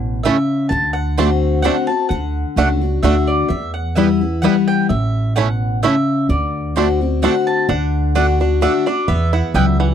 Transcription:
0.00 0.27 A1 loud
0.00 0.21 A2 medium
0.00 0.23 B2 medium
0.00 0.20 F#5 medium
0.23 0.69 C#3 medium
0.23 0.35 A3 loud
0.23 0.36 A3 medium
0.23 0.36 C#4 medium
0.23 0.35 E4 medium
0.23 0.37 E4 medium
0.23 0.35 C#5 loud
0.23 0.67 E5 medium
0.23 0.35 A5 medium
0.69 1.67 D2 medium
0.69 1.16 D3 medium
0.69 0.93 A5 medium
0.93 1.61 F#5 medium
1.18 1.62 D3 medium
1.18 1.62 A3 medium
1.18 1.29 A3 medium
1.18 1.27 C4 loud
1.18 1.29 C4 medium
1.18 1.63 C4 loud
1.18 1.29 D4 medium
1.18 1.28 F#4 medium
1.18 1.63 F#4 medium
1.18 1.28 D5 loud
1.18 1.28 A5 loud
1.62 1.88 D3 medium
1.62 1.88 A3 medium
1.62 1.76 A3 medium
1.62 1.74 C4 medium
1.62 1.89 C4 loud
1.62 1.76 C4 medium
1.62 1.76 D4 medium
1.62 1.74 F#4 medium
1.62 1.88 F#4 loud
1.62 1.74 D5 loud
1.62 1.87 F#5 loud
1.62 1.74 A5 loud
1.87 2.11 C4 soft
1.87 2.10 F#4 medium
1.87 2.08 A5 loud
2.09 2.43 D2 medium
2.09 2.56 D3 medium
2.09 3.02 F#5 medium
2.56 2.96 C#2 medium
2.56 2.81 D3 medium
2.56 2.67 A3 medium
2.56 2.81 A3 medium
2.56 2.69 A3 medium
2.56 2.81 D4 medium
2.56 2.69 D4 medium
2.56 2.67 F#4 medium
2.56 2.80 F#4 medium
2.56 2.67 D5 loud
2.56 2.68 F#5 loud
2.81 3.03 D4 soft
2.81 3.03 F#4 medium
3.03 3.43 D2 loud
3.03 3.48 D3 medium
3.03 3.13 A3 loud
3.03 3.48 A3 medium
3.03 3.15 A3 medium
3.03 3.48 D4 medium
3.03 3.16 D4 medium
3.03 3.13 F#4 medium
3.03 3.49 F#4 medium
3.03 3.14 D5 loud
3.03 3.29 E5 medium
3.03 3.14 F#5 loud
3.27 3.48 D5 medium
3.49 4.46 E2 medium
3.49 4.39 E2 medium
3.49 3.73 E5 medium
3.74 3.95 F#5 medium
3.95 4.20 E3 medium
3.95 4.21 G3 medium
3.95 4.08 G3 medium
3.95 4.06 B3 medium
3.95 4.21 B3 medium
3.95 4.08 B3 medium
3.95 4.06 E4 medium
3.95 4.20 E4 medium
3.95 4.09 E4 medium
3.95 4.07 B4 loud
3.95 4.44 E5 medium
3.95 4.07 G5 medium
4.21 4.43 B3 soft
4.21 4.42 E4 medium
4.42 4.87 E3 medium
4.42 4.88 G3 medium
4.42 4.55 G3 medium
4.42 4.53 B3 medium
4.42 4.88 B3 medium
4.42 4.55 B3 medium
4.42 4.53 E4 medium
4.42 4.88 E4 loud
4.42 4.55 E4 medium
4.42 4.53 B4 loud
4.42 4.66 F#5 medium
4.42 4.53 G5 loud
4.68 4.89 G5 loud
4.89 5.86 A1 medium
4.89 5.79 A2 medium
4.89 5.33 E5 medium
5.36 5.81 B2 medium
5.36 5.46 A3 medium
5.36 5.48 A3 medium
5.36 5.48 C#4 medium
5.36 5.46 E4 medium
5.36 5.48 E4 medium
5.36 5.46 C#5 loud
5.36 5.82 F#5 medium
5.36 5.46 A5 medium
5.83 6.27 C#3 medium
5.83 5.92 A3 medium
5.83 5.94 A3 medium
5.83 5.95 C#4 medium
5.83 5.93 E4 medium
5.83 5.95 E4 medium
5.83 5.93 C#5 loud
5.83 6.26 E5 medium
5.83 5.93 A5 loud
6.29 7.25 D2 loud
6.29 6.75 D3 medium
6.29 7.19 D5 medium
6.76 7.00 D3 medium
6.76 7.00 A3 medium
6.76 6.88 A3 medium
6.76 6.86 C4 loud
6.76 7.00 C4 medium
6.76 6.88 C4 medium
6.76 6.88 D4 medium
6.76 6.86 F#4 medium
6.76 7.00 F#4 loud
6.76 6.86 D5 medium
6.76 6.86 A5 loud
7.01 7.22 C4 soft
7.01 7.22 F#4 soft
7.22 7.67 D3 medium
7.22 7.67 A3 medium
7.22 7.34 A3 medium
7.22 7.32 C4 medium
7.22 7.67 C4 medium
7.22 7.34 C4 medium
7.22 7.34 D4 medium
7.22 7.32 F#4 medium
7.22 7.68 F#4 loud
7.22 7.33 D5 medium
7.22 7.46 F#5 medium
7.22 7.33 A5 loud
7.47 7.69 A5 medium
7.69 8.65 D2 medium
7.69 8.14 D3 loud
7.69 8.14 D4 medium
7.69 8.58 F#5 medium
8.15 8.39 D3 medium
8.15 8.25 A3 medium
8.15 8.40 A3 medium
8.15 8.40 D4 medium
8.15 8.25 F#4 medium
8.15 8.39 F#4 medium
8.15 8.25 D5 loud
8.15 8.25 F#5 loud
8.40 8.61 D4 medium
8.40 8.61 D4 soft
8.40 8.61 F#4 medium
8.61 8.85 D3 medium
8.61 8.72 A3 medium
8.61 8.86 A3 medium
8.61 8.86 D4 medium
8.61 8.72 F#4 medium
8.61 8.86 F#4 loud
8.61 8.72 D5 loud
8.61 8.88 E5 medium
8.61 8.72 F#5 loud
8.86 9.09 D4 medium
8.86 9.08 F#4 medium
8.86 9.07 D5 medium
9.08 9.40 E2 loud
9.08 9.94 E2 medium
9.08 9.75 B3 medium
9.08 9.32 E5 medium
9.33 9.94 E4 medium
9.33 9.55 F#5 medium
9.54 9.94 C#2 loud
9.54 9.94 F#3 medium
9.54 9.94 G3 medium
9.54 9.64 B3 medium
9.54 9.65 E4 loud
9.54 9.65 B4 loud
9.54 9.79 E5 medium
9.54 9.65 G5 loud
9.80 9.94 E3 medium
9.80 9.94 F#5 medium

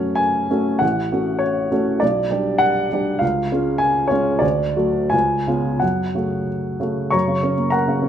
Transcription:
0.00 0.84 F#2 soft
0.00 0.47 A3 soft
0.00 0.47 C#4 soft
0.00 0.48 F#4 soft
0.00 0.19 C#5 soft
0.15 0.80 G#5 medium
0.51 0.79 A3 soft
0.51 0.78 C#4 soft
0.51 0.79 F#4 soft
0.79 1.11 A1 soft
0.79 1.41 F#5 medium
1.12 1.68 A3 soft
1.12 1.69 C#4 soft
1.12 1.69 F#4 soft
1.39 1.71 C#5 medium
1.72 1.98 A3 soft
1.72 1.98 C#4 soft
1.72 1.98 F#4 soft
2.00 2.31 B1 soft
2.00 2.60 D5 medium
2.30 2.87 G3 soft
2.30 2.87 D4 soft
2.30 2.87 G4 soft
2.58 3.20 F#5 medium
2.92 3.19 G3 soft
2.92 3.19 D4 soft
2.92 3.20 G4 soft
3.19 3.50 C#2 soft
3.19 3.79 F5 medium
3.52 4.07 G#3 soft
3.52 4.07 C#4 soft
3.52 4.07 F4 soft
3.78 4.09 G#5 medium
4.08 4.39 G#3 soft
4.08 4.39 C#4 soft
4.08 4.39 F4 soft
4.08 4.41 C#5 medium
4.39 4.75 D2 soft
4.39 5.11 D5 medium
4.76 5.09 F#3 soft
4.76 5.09 A3 soft
4.76 5.09 F#4 soft
5.10 5.46 C#2 soft
5.10 5.80 G#5 medium
5.47 5.78 C#3 soft
5.47 5.79 B3 soft
5.47 5.79 F4 soft
5.80 6.15 F#2 soft
5.80 6.48 F#5 medium
6.15 6.77 C#3 soft
6.15 6.77 A3 soft
6.15 6.78 F#4 soft
6.80 7.09 C#3 soft
6.80 7.10 A3 soft
6.80 7.10 F#4 soft
7.11 8.09 F#2 soft
7.11 7.70 C#5 soft
7.11 7.69 A#5 medium
7.11 7.73 C#6 medium
7.28 7.53 C#3 soft
7.43 7.68 C#4 soft
7.58 8.05 A#3 soft
7.70 8.09 A#4 soft
7.70 8.09 F#5 soft
7.70 8.09 A#5 medium
7.88 8.09 C#3 soft
8.02 8.09 C#4 soft

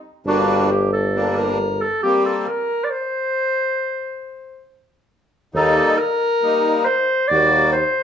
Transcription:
0.25 1.84 G1 medium
0.25 0.70 G3 medium
0.25 0.70 A#3 medium
0.25 0.70 D4 medium
0.25 0.67 F#4 medium
0.70 0.90 G4 medium
0.93 1.33 A4 medium
1.15 1.58 G3 medium
1.15 1.58 A#3 soft
1.15 1.58 D4 medium
1.37 1.83 A#4 medium
1.81 2.02 A4 medium
2.03 2.47 G3 medium
2.03 2.47 A#3 medium
2.03 2.47 C4 medium
2.03 2.23 G4 medium
2.25 2.49 A4 medium
2.47 2.86 A#4 medium
2.84 2.92 D5 medium
2.90 4.67 C5 loud
5.54 5.81 D#2 medium
5.54 5.99 G3 medium
5.54 5.99 A#3 medium
5.54 5.99 D#4 medium
5.54 5.99 A4 medium
5.98 6.86 A#4 loud
6.42 6.87 G3 medium
6.42 6.87 A#3 medium
6.42 6.87 D#4 medium
6.85 7.29 C5 medium
7.28 7.83 D#2 medium
7.28 7.75 G3 medium
7.28 7.75 A#3 medium
7.28 7.75 F#4 medium
7.28 7.71 D5 loud
7.72 8.03 C5 loud

